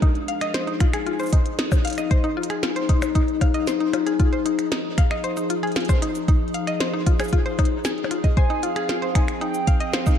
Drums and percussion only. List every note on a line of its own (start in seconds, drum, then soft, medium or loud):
0.02 kick loud
0.02 closed hi-hat medium
0.15 closed hi-hat soft
0.28 closed hi-hat loud
0.41 finger snap medium
0.41 closed hi-hat medium
0.54 snare loud
0.54 closed hi-hat medium
0.67 closed hi-hat soft
0.80 finger snap medium
0.80 kick loud
0.80 closed hi-hat loud
0.93 finger snap medium
0.93 closed hi-hat medium
1.07 closed hi-hat medium
1.20 closed hi-hat soft
1.20 cabasa soft
1.23 cabasa soft
1.26 cabasa medium
1.29 kick loud
1.29 closed hi-hat loud
1.29 cabasa medium
1.46 closed hi-hat medium
1.59 snare loud
1.59 closed hi-hat medium
1.72 kick loud
1.72 closed hi-hat soft
1.72 percussion blips loud
1.72 cabasa medium
1.85 closed hi-hat medium
1.87 closed hi-hat medium
1.90 closed hi-hat medium
1.93 closed hi-hat medium
1.98 finger snap soft
1.98 closed hi-hat medium
1.98 cabasa medium
2.11 kick loud
2.11 closed hi-hat medium
2.24 closed hi-hat soft
2.43 closed hi-hat medium
2.50 finger snap medium
2.50 closed hi-hat medium
2.63 snare loud
2.76 closed hi-hat medium
2.89 kick loud
2.89 closed hi-hat loud
3.02 finger snap medium
3.02 closed hi-hat medium
3.02 percussion blips medium
3.02 cabasa medium
3.15 kick medium
3.15 closed hi-hat medium
3.28 closed hi-hat soft
3.41 kick loud
3.41 closed hi-hat loud
3.41 percussion blips medium
3.54 closed hi-hat medium
3.67 snare loud
3.67 closed hi-hat medium
3.67 cabasa medium
3.80 closed hi-hat soft
3.93 finger snap soft
3.93 closed hi-hat loud
3.93 percussion blips medium
4.07 closed hi-hat medium
4.20 kick loud
4.20 closed hi-hat medium
4.33 closed hi-hat soft
4.46 closed hi-hat medium
4.59 finger snap medium
4.59 closed hi-hat medium
4.72 snare loud
4.72 closed hi-hat medium
4.98 finger snap medium
4.98 kick loud
4.98 closed hi-hat loud
5.11 finger snap medium
5.11 closed hi-hat medium
5.24 closed hi-hat medium
5.37 closed hi-hat soft
5.37 cabasa medium
5.50 closed hi-hat loud
5.63 closed hi-hat soft
5.67 closed hi-hat soft
5.72 closed hi-hat soft
5.76 snare loud
5.76 closed hi-hat medium
5.80 closed hi-hat soft
5.85 closed hi-hat soft
5.89 kick loud
5.89 closed hi-hat soft
5.89 percussion blips medium
5.89 cabasa medium
6.02 finger snap soft
6.02 closed hi-hat medium
6.15 closed hi-hat medium
6.15 cabasa medium
6.28 kick loud
6.28 closed hi-hat medium
6.48 closed hi-hat soft
6.54 closed hi-hat medium
6.67 finger snap medium
6.67 closed hi-hat medium
6.80 snare loud
6.80 closed hi-hat medium
7.07 kick loud
7.07 closed hi-hat medium
7.20 finger snap medium
7.20 closed hi-hat medium
7.20 percussion blips medium
7.20 cabasa soft
7.24 cabasa medium
7.28 cabasa medium
7.33 kick medium
7.33 closed hi-hat medium
7.46 closed hi-hat soft
7.59 kick loud
7.59 closed hi-hat medium
7.59 percussion blips medium
7.65 closed hi-hat medium
7.85 snare loud
7.85 closed hi-hat medium
7.85 cabasa medium
7.98 closed hi-hat soft
8.04 percussion blips medium
8.11 finger snap soft
8.11 closed hi-hat loud
8.24 kick medium
8.24 closed hi-hat medium
8.37 kick loud
8.37 closed hi-hat medium
8.50 closed hi-hat soft
8.63 closed hi-hat medium
8.76 finger snap medium
8.76 closed hi-hat medium
8.89 snare loud
8.89 closed hi-hat soft
9.02 closed hi-hat soft
9.15 finger snap medium
9.15 kick loud
9.15 closed hi-hat medium
9.28 finger snap medium
9.28 closed hi-hat medium
9.41 closed hi-hat soft
9.54 closed hi-hat soft
9.54 cabasa medium
9.67 kick loud
9.67 closed hi-hat medium
9.80 closed hi-hat soft
9.94 snare loud
9.94 closed hi-hat medium
10.07 kick loud
10.07 closed hi-hat soft
10.07 cabasa medium
10.11 closed hi-hat soft
10.15 closed hi-hat soft